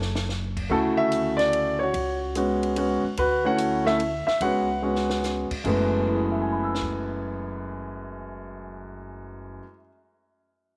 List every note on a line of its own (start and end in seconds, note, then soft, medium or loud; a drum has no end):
0.00 0.66 F#1 medium
0.00 0.26 A4 medium
0.00 0.24 C#5 medium
0.00 snare medium
0.15 snare medium
0.29 snare medium
0.57 kick medium
0.57 crash medium
0.70 1.90 D2 medium
0.70 1.86 C#3 medium
0.70 1.85 A3 medium
0.70 1.86 E4 medium
0.70 1.82 F#4 medium
0.70 0.78 A4 medium
0.97 1.36 E5 loud
1.12 hi-hat pedal medium
1.12 ride medium
1.37 1.76 D5 medium
1.37 snare soft
1.37 ride soft
1.53 ride medium
1.79 2.18 C#5 medium
1.83 2.33 F#4 medium
1.94 3.00 C#2 medium
1.94 ride medium
2.35 2.75 G#3 medium
2.35 2.75 B3 medium
2.35 2.76 C#4 medium
2.35 2.76 F#4 medium
2.35 hi-hat pedal medium
2.35 ride medium
2.63 ride soft
2.76 3.01 G#3 medium
2.76 3.02 B3 medium
2.76 3.02 C#4 medium
2.76 3.02 F#4 medium
2.76 ride medium
3.03 muted upright bass stroke soft
3.17 4.24 D2 medium
3.17 3.44 F#4 medium
3.17 3.47 B4 medium
3.17 ride medium
3.44 3.83 A3 medium
3.44 3.84 C#4 medium
3.44 3.84 E4 medium
3.44 3.84 F#4 medium
3.44 3.88 F#5 loud
3.58 hi-hat pedal medium
3.58 ride medium
3.85 3.98 A3 medium
3.85 3.98 C#4 medium
3.85 3.99 E4 medium
3.85 3.99 A4 medium
3.85 4.25 E5 loud
3.85 snare soft
4.00 ride medium
4.27 4.40 E5 medium
4.27 muted upright bass stroke soft
4.27 snare soft
4.41 5.47 C#2 medium
4.41 4.66 G#3 medium
4.41 4.67 B3 medium
4.41 4.67 C#4 medium
4.41 4.67 F#4 medium
4.41 5.21 B4 medium
4.41 5.20 F#5 medium
4.41 ride medium
4.82 5.46 G#3 medium
4.82 5.46 B3 soft
4.82 5.46 C#4 soft
4.82 5.46 F#4 medium
4.96 snare soft
5.10 snare medium
5.24 snare medium
5.24 hi-hat pedal medium
5.51 muted upright bass stroke soft
5.51 kick medium
5.51 crash medium
5.64 9.58 F#1 medium
5.64 9.62 F#2 medium
5.64 9.62 E3 medium
5.64 9.63 G#3 medium
5.64 9.63 A3 medium
5.64 9.63 B3 medium
5.64 kick soft
5.64 crash medium
6.07 9.59 E4 soft
6.14 9.62 G#4 soft
6.22 9.66 B4 soft
6.31 9.71 E5 soft
6.41 9.76 G#5 soft
6.52 9.81 B5 soft
6.64 9.87 E6 soft
6.75 snare medium
6.82 kick medium